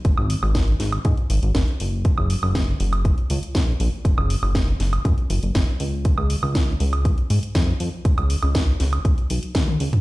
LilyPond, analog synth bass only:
\new Staff \with { instrumentName = "Analog synth bass" } { \clef bass \time 4/4 \key ges \major \tempo 4 = 120 aes,,16 aes,,16 r16 aes,,8. aes,,16 r16 aes,16 r16 aes,,16 aes,,16 aes,,16 r16 ges,,8~ | ges,,16 ges,,16 r16 ges,,8. ges,,8. r16 des,16 r16 bes,,16 r16 bes,,16 r16 | ges,,16 ges,,16 r16 ges,,8. ges,,16 r16 ges,16 r16 ges,,16 ges,,16 ges,,16 r16 des,8~ | des,16 des,16 r16 des,8. des,8. r16 aes,16 r16 f,16 r16 f,16 r16 |
des,16 des,16 r16 des,8. des,16 r8. ces,16 r8. des,16 r16 | }